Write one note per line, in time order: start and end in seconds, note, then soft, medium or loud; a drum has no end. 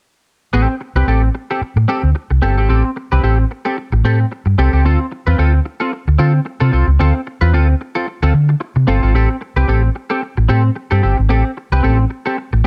0.53 0.65 A1 medium
0.53 0.74 C4 medium
0.53 0.68 G4 medium
0.53 0.68 A4 medium
0.69 muted clean electric guitar stroke soft
0.81 muted clean electric guitar stroke soft
0.95 1.04 C2 medium
0.95 1.06 C4 medium
0.95 1.07 G4 medium
0.95 1.08 B4 medium
1.07 1.27 A1 medium
1.07 1.28 C4 medium
1.07 1.22 G4 medium
1.07 1.22 A4 medium
1.23 muted clean electric guitar stroke soft
1.35 muted clean electric guitar stroke soft
1.51 1.61 C4 soft
1.51 1.61 G4 medium
1.51 1.62 A4 medium
1.61 muted fingered electric bass stroke soft
1.61 muted clean electric guitar stroke soft
1.76 1.85 A2 medium
1.76 muted clean electric guitar stroke soft
1.88 2.09 C4 medium
1.88 2.03 G4 medium
1.88 2.02 A4 medium
2.03 2.12 D2 medium
2.03 muted clean electric guitar stroke soft
2.15 muted clean electric guitar stroke soft
2.31 2.39 C2 medium
2.31 muted clean electric guitar stroke soft
2.42 2.58 G1 medium
2.42 2.57 C4 medium
2.42 2.57 G4 medium
2.42 2.56 A4 medium
2.57 2.66 G#1 medium
2.57 2.68 C4 medium
2.57 2.68 G4 medium
2.57 2.69 A4 medium
2.69 2.81 A1 medium
2.69 2.90 C4 medium
2.69 2.84 G4 medium
2.69 2.83 A4 medium
2.84 muted clean electric guitar stroke soft
2.96 muted clean electric guitar stroke soft
3.12 3.21 C2 medium
3.12 3.22 C4 medium
3.12 3.22 G4 medium
3.12 3.24 B4 medium
3.23 3.43 A1 medium
3.23 3.44 C4 medium
3.23 3.38 G4 medium
3.23 3.38 A4 medium
3.39 muted clean electric guitar stroke soft
3.51 muted clean electric guitar stroke soft
3.65 3.77 C4 soft
3.65 3.77 G4 medium
3.65 3.77 A4 medium
3.78 muted clean electric guitar stroke soft
3.92 4.01 A1 medium
3.92 muted clean electric guitar stroke soft
4.04 4.23 A2 medium
4.04 4.25 C4 medium
4.04 4.20 G4 medium
4.04 4.19 A4 medium
4.20 muted clean electric guitar stroke soft
4.32 muted clean electric guitar stroke soft
4.46 4.54 G2 medium
4.46 muted clean electric guitar stroke soft
4.58 4.69 C2 medium
4.58 4.73 C4 medium
4.58 4.72 G4 medium
4.58 4.72 A4 medium
4.73 4.81 C#2 medium
4.73 4.84 C4 soft
4.73 4.85 G4 medium
4.73 4.85 A4 medium
4.85 4.96 D2 medium
4.85 5.05 C4 medium
4.85 5.00 F4 medium
4.85 4.99 A4 loud
5.00 muted clean electric guitar stroke soft
5.12 muted clean electric guitar stroke soft
5.27 5.35 E2 medium
5.27 5.37 C4 soft
5.27 5.38 F4 medium
5.27 5.39 B4 medium
5.38 5.58 D2 medium
5.38 5.59 C4 medium
5.38 5.53 F4 medium
5.38 5.52 A4 medium
5.54 muted clean electric guitar stroke soft
5.65 muted clean electric guitar stroke soft
5.80 5.92 C4 soft
5.80 5.92 F4 medium
5.80 5.92 A4 medium
5.93 muted clean electric guitar stroke soft
6.08 6.16 D2 medium
6.08 muted clean electric guitar stroke soft
6.19 6.39 D3 medium
6.19 6.39 C4 medium
6.19 6.33 F4 medium
6.19 6.32 A4 medium
6.34 muted clean electric guitar stroke soft
6.45 muted clean electric guitar stroke soft
6.60 6.70 C3 medium
6.60 6.71 C4 medium
6.60 6.71 F4 medium
6.60 6.72 A4 medium
6.72 6.84 C2 medium
6.72 6.89 C4 medium
6.72 6.87 F4 medium
6.72 6.86 A4 medium
6.87 6.96 C#2 medium
6.87 muted clean electric guitar stroke soft
6.99 7.11 D2 medium
6.99 7.20 C4 medium
6.99 7.14 F4 medium
6.99 7.13 A4 medium
7.15 muted clean electric guitar stroke soft
7.27 muted clean electric guitar stroke soft
7.41 7.53 E2 medium
7.41 7.52 C4 soft
7.41 7.53 F4 medium
7.41 7.54 B4 medium
7.53 7.73 D2 medium
7.53 7.74 C4 medium
7.53 7.68 F4 medium
7.53 7.67 A4 medium
7.69 muted clean electric guitar stroke soft
7.81 muted clean electric guitar stroke soft
7.95 8.06 C4 medium
7.95 8.07 F4 medium
7.95 8.07 A4 medium
8.07 muted clean electric guitar stroke soft
8.22 8.31 D2 medium
8.22 8.33 C4 medium
8.22 8.33 F4 medium
8.22 8.34 A4 medium
8.34 8.54 D3 medium
8.34 muted clean electric guitar stroke soft
8.49 muted clean electric guitar stroke soft
8.60 muted clean electric guitar stroke soft
8.76 8.85 C3 medium
8.76 muted clean electric guitar stroke soft
8.87 8.99 G1 medium
8.87 9.03 C4 medium
8.87 9.02 F4 medium
8.87 9.01 A4 medium
9.03 9.12 G#1 medium
9.03 9.14 C4 soft
9.03 9.15 F4 medium
9.03 9.15 A4 medium
9.14 9.25 A1 medium
9.14 9.35 C4 medium
9.14 9.29 G4 medium
9.14 9.29 A4 loud
9.30 muted clean electric guitar stroke soft
9.41 muted clean electric guitar stroke soft
9.56 9.65 C2 medium
9.56 9.67 C4 soft
9.56 9.67 G4 medium
9.56 9.69 B4 medium
9.68 9.88 A1 loud
9.68 9.89 C4 medium
9.68 9.82 G4 medium
9.68 9.82 A4 medium
9.83 muted clean electric guitar stroke soft
9.95 muted clean electric guitar stroke soft
10.10 10.21 C4 soft
10.10 10.21 G4 medium
10.10 10.22 A4 medium
10.22 muted clean electric guitar stroke soft
10.37 10.46 A1 medium
10.37 muted clean electric guitar stroke soft
10.49 10.69 A2 medium
10.49 10.70 C4 medium
10.49 10.63 G4 medium
10.49 10.63 A4 medium
10.64 muted clean electric guitar stroke soft
10.76 muted clean electric guitar stroke soft
10.91 11.00 G2 medium
10.91 11.01 C4 medium
10.91 11.02 G4 medium
10.91 11.02 A4 medium
11.03 11.15 G1 medium
11.03 11.20 C4 soft
11.03 11.17 G4 medium
11.03 11.16 A4 medium
11.17 11.27 G#1 medium
11.17 muted clean electric guitar stroke soft
11.29 11.41 A1 loud
11.29 11.50 C4 medium
11.29 11.44 G4 medium
11.29 11.44 A4 medium
11.45 muted clean electric guitar stroke soft
11.57 muted clean electric guitar stroke soft
11.72 11.80 C2 medium
11.72 11.82 C4 soft
11.72 11.82 G4 medium
11.72 11.84 B4 medium
11.83 12.04 A1 medium
11.83 12.04 C4 medium
11.83 11.98 G4 medium
11.83 11.98 A4 loud
11.99 muted clean electric guitar stroke medium
12.10 muted clean electric guitar stroke soft
12.26 12.37 C4 medium
12.26 12.37 G4 medium
12.26 12.37 A4 medium
12.38 muted clean electric guitar stroke soft
12.53 12.61 A1 medium
12.53 muted clean electric guitar stroke medium